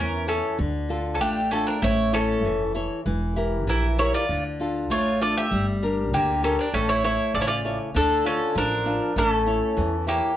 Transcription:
Already playing: upright bass E2, nylon-string guitar E3 E4 C#5, mandolin C#4, bouzouki A#4
0.27 mandolin C#4, nylon-string guitar E4 A4 C#5, bouzouki A4
0.59 upright bass D2, nylon-string guitar D3
0.89 nylon-string guitar D4 F4 A4
1.14 mandolin C#4, bouzouki A4
1.20 upright bass A1, nylon-string guitar A3, mandolin D4, bouzouki G4
1.51 mandolin C#4, nylon-string guitar D4 F4 A4, bouzouki A4
1.67 mandolin D4, bouzouki A#4
1.82 upright bass A1, nylon-string guitar A3, mandolin E4, bouzouki C#5
2.13 mandolin C#4, nylon-string guitar E4 A4 C#5, bouzouki A4
2.44 upright bass F1, nylon-string guitar E3
2.74 nylon-string guitar E4 A4 C#5
3.06 upright bass E1, nylon-string guitar E3
3.36 nylon-string guitar E4 G4 A#4
3.67 upright bass A#1, nylon-string guitar E3, mandolin E4, bouzouki A#4
3.99 mandolin E4, nylon-string guitar E4 G4 A#4, bouzouki C#5
4.14 mandolin F4, bouzouki D5
4.29 upright bass D2, nylon-string guitar D3
4.60 nylon-string guitar D4 F4 A4
4.90 upright bass A1, nylon-string guitar A3, mandolin F4, bouzouki C#5
5.21 nylon-string guitar D4 F4 A4, mandolin F4, bouzouki D5
5.37 mandolin G4, bouzouki E5
5.51 upright bass G1, nylon-string guitar G3
5.83 nylon-string guitar D4 G4 A#4
6.13 upright bass D2, nylon-string guitar D3, mandolin A#3, bouzouki G4
6.43 mandolin C#4, nylon-string guitar D4 G4 A#4, bouzouki A4
6.59 mandolin D4, bouzouki A#4
6.73 upright bass A1, nylon-string guitar A3, mandolin C#4, bouzouki A4
6.89 mandolin E4, bouzouki C#5
7.04 nylon-string guitar E4 A4 C#5, mandolin E4, bouzouki C#5
7.34 upright bass A1, nylon-string guitar C#3, mandolin A4, bouzouki D5
7.41 mandolin E4, bouzouki C#5
7.47 mandolin F4, bouzouki D5
7.65 nylon-string guitar E4 A4 C#5
7.95 upright bass D2, nylon-string guitar D3, mandolin D4, bouzouki A4
8.25 mandolin C#4, nylon-string guitar F4, bouzouki A4
8.55 upright bass A1, nylon-string guitar F3, mandolin D4, bouzouki A#4
8.86 nylon-string guitar D4 F4
9.16 upright bass A1, nylon-string guitar A3, mandolin C#4, bouzouki A4
9.46 nylon-string guitar E4 A4 C#5
9.77 upright bass E2, nylon-string guitar E3
10.07 mandolin A#3, nylon-string guitar E4 A4 C#5, bouzouki G4

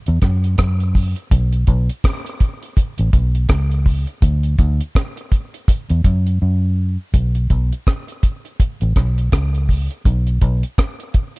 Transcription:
0.06 fingered electric bass E2, closed hi-hat
0.22 fingered electric bass F#2, kick, cross-stick, closed hi-hat
0.44 closed hi-hat
0.58 fingered electric bass F#2, kick, cross-stick, closed hi-hat
0.80 closed hi-hat
0.95 kick, open hi-hat
1.16 closed hi-hat
1.31 fingered electric bass B1, kick, closed hi-hat
1.52 closed hi-hat
1.67 fingered electric bass B1, kick, closed hi-hat
1.90 closed hi-hat
2.04 kick, cross-stick, closed hi-hat
2.26 closed hi-hat
2.40 kick, closed hi-hat
2.63 closed hi-hat
2.77 kick, closed hi-hat
2.98 fingered electric bass A1, closed hi-hat
3.13 fingered electric bass B1, kick, closed hi-hat
3.35 closed hi-hat
3.49 fingered electric bass C#2, kick, cross-stick, closed hi-hat
3.71 closed hi-hat
3.86 kick, open hi-hat
4.07 closed hi-hat
4.22 fingered electric bass D2, kick, closed hi-hat
4.43 closed hi-hat
4.58 fingered electric bass D2, kick, closed hi-hat
4.81 closed hi-hat
4.95 kick, cross-stick, closed hi-hat
5.17 closed hi-hat
5.32 kick, closed hi-hat
5.54 closed hi-hat
5.68 kick, closed hi-hat
5.90 fingered electric bass E2, closed hi-hat
6.04 fingered electric bass F#2, kick, closed hi-hat
6.27 closed hi-hat
6.42 fingered electric bass F#2
7.14 fingered electric bass B1, kick, closed hi-hat
7.35 closed hi-hat
7.50 fingered electric bass B1, kick, closed hi-hat
7.73 closed hi-hat
7.87 kick, cross-stick, closed hi-hat
8.08 closed hi-hat
8.23 kick, closed hi-hat
8.45 closed hi-hat
8.60 kick, closed hi-hat
8.81 fingered electric bass A1, closed hi-hat
8.96 fingered electric bass B1, kick, cross-stick, closed hi-hat
9.18 closed hi-hat
9.32 fingered electric bass C#2, kick, cross-stick, closed hi-hat
9.55 closed hi-hat
9.69 kick, open hi-hat
9.91 closed hi-hat
10.05 fingered electric bass B1, kick, closed hi-hat
10.27 closed hi-hat
10.41 fingered electric bass B1, kick, closed hi-hat
10.63 closed hi-hat
10.78 kick, cross-stick, closed hi-hat
11.00 closed hi-hat
11.14 kick, closed hi-hat
11.36 closed hi-hat

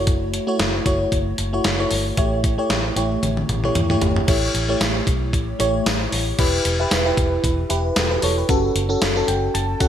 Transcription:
Already playing: fingered electric bass F#1, fm electric piano A3 E4 F#4 C#5
0.07 kick, closed hi-hat
0.34 closed hi-hat
0.47 fm electric piano A3 E4 F#4 C#5
0.59 fingered electric bass F#1, snare, closed hi-hat
0.86 fingered electric bass F#1, fm electric piano A3 E4 F#4 C#5, kick, closed hi-hat
1.12 fingered electric bass F#1, kick, closed hi-hat
1.38 fingered electric bass F#1, closed hi-hat
1.53 fm electric piano A3 E4 F#4 C#5
1.64 fingered electric bass F#1, snare, closed hi-hat
1.79 fm electric piano A3 E4 F#4 C#5
1.91 fingered electric bass G1, open hi-hat
2.17 fingered electric bass A1, fm electric piano A3 E4 G4 C#5, kick, closed hi-hat
2.44 kick, closed hi-hat
2.58 fm electric piano A3 E4 G4 C#5
2.70 fingered electric bass A1, snare, closed hi-hat
2.96 fingered electric bass A1, fm electric piano A3 E4 G4 C#5, closed hi-hat
3.23 fingered electric bass A1, closed hi-hat, high tom
3.37 high tom
3.49 fingered electric bass A1, closed hi-hat, mid tom
3.64 fm electric piano A3 E4 G4 C#5, mid tom
3.75 fingered electric bass E2, closed hi-hat, mid tom
3.90 fm electric piano A3 E4 G4 C#5, mid tom
4.01 fingered electric bass G1, closed hi-hat, floor tom
4.16 floor tom
4.27 fingered electric bass A1, fm electric piano A3 E4 G4 C#5, kick, closed hi-hat, crash
4.54 fingered electric bass A1, closed hi-hat
4.69 fm electric piano A3 E4 G4 C#5
4.81 fingered electric bass A1, snare, closed hi-hat, tambourine
5.07 fingered electric bass B1, kick, closed hi-hat
5.33 fingered electric bass A1, kick, closed hi-hat
5.59 fingered electric bass A1, fm electric piano A3 E4 G4 C#5, closed hi-hat
5.86 fingered electric bass A1, snare, closed hi-hat, tambourine
6.12 fingered electric bass A1, open hi-hat
6.39 fingered electric bass E1, fm electric piano E4 G4 B4, kick, closed hi-hat, crash
6.65 fingered electric bass E1, closed hi-hat
6.80 fm electric piano E4 G4 B4
6.91 fingered electric bass E1, snare, closed hi-hat, tambourine
7.06 fm electric piano E4 G4 B4
7.17 fingered electric bass E1, kick, closed hi-hat
7.44 fingered electric bass E1, kick, closed hi-hat
7.70 fingered electric bass E1, fm electric piano E4 G4 B4, closed hi-hat
7.96 fingered electric bass E1, fm electric piano F#4 A4, snare, closed hi-hat, tambourine
8.11 fm electric piano G4 B4
8.22 fingered electric bass E1, fm electric piano A4 C#5, open hi-hat
8.38 fm electric piano G4 B4
8.49 fingered electric bass F#1, fm electric piano C#4 F#4 A4, kick, closed hi-hat
8.75 fingered electric bass F#1, closed hi-hat
8.89 fm electric piano C#4 F#4 A4
9.02 fingered electric bass F#1, snare, closed hi-hat, tambourine
9.16 fm electric piano C#4 F#4 A4
9.28 fingered electric bass F#1, fm electric piano G5, closed hi-hat
9.54 fingered electric bass F#1, fm electric piano A5, closed hi-hat
9.80 fingered electric bass F#1, fm electric piano C#4 F#4 A4 F#5, kick, closed hi-hat

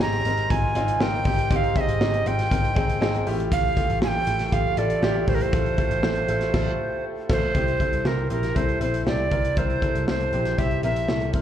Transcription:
Already playing: upright piano G#2 G#4
0.00 picked electric bass G#1, upright piano C4 D#4 G4, recorder A#5, snare
0.12 closed hi-hat
0.25 picked electric bass G#1, upright piano C4 D#4 A#4, closed hi-hat
0.37 closed hi-hat
0.50 picked electric bass G#1, upright piano C4 D#4 F4, recorder G#5, kick, closed hi-hat
0.75 picked electric bass G#1, upright piano C4 D#4 F4, closed hi-hat
0.88 closed hi-hat
1.00 picked electric bass G#1, upright piano C4 D#4 A#4, recorder G5, snare
1.25 picked electric bass G#1, upright piano C4 D#4 G4, kick, open hi-hat
1.38 closed hi-hat
1.51 picked electric bass G#1, upright piano G#2 C4 D#4 G4, recorder G5, kick, closed hi-hat
1.56 recorder F5
1.64 closed hi-hat
1.75 upright piano C4 D#4 G#4, recorder E5, kick, closed hi-hat
1.81 recorder D#5
1.88 picked electric bass G#1, closed hi-hat
2.00 picked electric bass G#1, upright piano C4 D#4 G4, snare
2.14 closed hi-hat
2.26 picked electric bass G#1, upright piano C4 D#4 F4, recorder G5, closed hi-hat
2.39 snare, closed hi-hat
2.50 picked electric bass G#1, upright piano C4 D#4 A#4, kick, closed hi-hat
2.65 closed hi-hat
2.75 picked electric bass G#1, upright piano C4 D#4 G#4, kick, closed hi-hat
2.89 closed hi-hat
3.01 picked electric bass G#1, upright piano C4 D#4 G#4, snare
3.15 closed hi-hat
3.26 picked electric bass A1, upright piano A2 A3 F4 G4, open hi-hat
3.40 closed hi-hat
3.52 recorder F5, kick, closed hi-hat
3.76 upright piano A3 F4 G4, kick, closed hi-hat
3.90 picked electric bass A1, closed hi-hat
4.01 picked electric bass A1, upright piano A3 F4 G4, recorder G#5, snare
4.08 recorder G5
4.26 picked electric bass A1, upright piano A3 F4 A4, closed hi-hat
4.39 snare, closed hi-hat
4.51 picked electric bass A1, upright piano A3 F4 G4, recorder F5, kick, closed hi-hat
4.77 picked electric bass A1, upright piano A3 F4 A4, recorder D5, closed hi-hat
4.90 closed hi-hat
5.02 picked electric bass A1, upright piano A3 F4 G4, snare
5.27 picked electric bass A1, upright piano A2 A3 F4 G4, recorder C5, kick, open hi-hat
5.35 recorder A#4
5.41 recorder C5, closed hi-hat
5.52 picked electric bass A1, upright piano A3 F4 A4, kick, closed hi-hat
5.66 closed hi-hat
5.77 upright piano A3 F4 A4, kick, closed hi-hat
5.91 picked electric bass A1, closed hi-hat
6.02 picked electric bass A1, upright piano A3 F4 A4, snare
6.16 closed hi-hat
6.28 picked electric bass A1, upright piano A3 F4 A4, closed hi-hat
6.41 snare, closed hi-hat
6.53 picked electric bass A1, upright piano A3 F4 A4, kick, snare, crash
7.29 picked electric bass A1, upright piano A3 F4 A4, recorder C5, kick, snare, crash
7.54 picked electric bass C2, upright piano C3 C4 E4 G4, kick, closed hi-hat
7.68 closed hi-hat
7.79 upright piano C4 E4 A4, kick, closed hi-hat
7.92 picked electric bass C2, closed hi-hat
8.05 picked electric bass C2, upright piano C4 E4 G4, recorder A#4, snare
8.30 picked electric bass A#1, upright piano C4 E4 G4, recorder A#4, closed hi-hat
8.43 snare, closed hi-hat
8.55 picked electric bass C2, upright piano C4 E4 A4, recorder C5, kick, closed hi-hat
8.69 closed hi-hat
8.80 picked electric bass A#1, upright piano C4 E4 A4, recorder C5, closed hi-hat
8.94 closed hi-hat
9.06 picked electric bass C2, upright piano C4 E4 G4, recorder D5, snare
9.31 picked electric bass C2, upright piano C4 E4 A#4, kick, closed hi-hat
9.45 closed hi-hat
9.56 picked electric bass C2, upright piano C3 C4 E4 A#4, recorder C5, kick, closed hi-hat
9.70 closed hi-hat
9.82 upright piano C4 E4 A4, kick, closed hi-hat
9.95 picked electric bass C2, closed hi-hat
10.07 picked electric bass C2, upright piano C4 E4 A4, recorder C5, snare
10.20 closed hi-hat
10.33 picked electric bass A#1, upright piano C4 E4 G4, closed hi-hat
10.45 snare, closed hi-hat
10.58 picked electric bass C2, upright piano C4 E4 G4, recorder E5, kick, closed hi-hat
10.71 closed hi-hat
10.83 picked electric bass A#1, upright piano C4 E4 A#4, recorder E5, closed hi-hat
10.96 closed hi-hat
11.09 picked electric bass C2, upright piano C4 E4 A4, snare
11.21 closed hi-hat
11.33 picked electric bass C2, upright piano C4 E4 A#4, kick, closed hi-hat

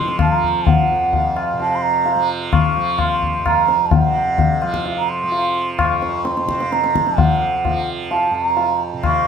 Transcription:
Already playing: tanpura F2 C3 F3, bansuri C6
0.08 tabla te
0.19 bansuri A5, tabla na, tabla ge
0.31 tanpura F3, bansuri A#5
0.43 tabla ge
0.67 bansuri F#5, tabla tin, tabla ge
0.91 tanpura F2
1.13 tabla tin, tabla ge
1.37 tabla na
1.53 tanpura C3
1.60 bansuri A5, tabla tin
1.75 bansuri C6
1.82 bansuri A#5
2.06 tabla tin
2.15 tanpura F3
2.52 bansuri C#6, tabla na, tabla ge
2.76 tanpura F3
2.99 bansuri C6, tabla na, tabla ge
3.23 tabla ge
3.39 tanpura F2
3.46 bansuri A#5, tabla na, tabla ge
3.68 tabla te
3.86 bansuri A5
3.91 bansuri F#5, tabla tin, tabla ge
4.01 tanpura C3
4.38 tabla tin, tabla ge
4.62 tanpura F3, tabla na
4.74 tabla ke
4.86 tabla tin
4.98 bansuri A#5
5.09 bansuri C6
5.23 tanpura F3
5.32 tabla tin
5.79 bansuri C#6, tabla na, tabla ge
5.84 tanpura F2
6.02 tabla te
6.18 bansuri C#6
6.24 bansuri C6, tabla te
6.37 tabla te
6.45 tanpura C3, tabla ke
6.60 tabla te
6.72 bansuri A#5, tabla te
6.84 tabla te
6.96 tabla ke
7.07 tanpura F3, tabla te
7.18 bansuri F#5, tabla tin, tabla ge
7.65 tanpura F3, tabla tin, tabla ge
8.11 bansuri A5, tabla tin
8.31 tanpura F2, bansuri A5
8.45 bansuri A#5
8.57 tabla tin
8.93 tanpura C3
9.04 bansuri C#6, tabla na, tabla ge

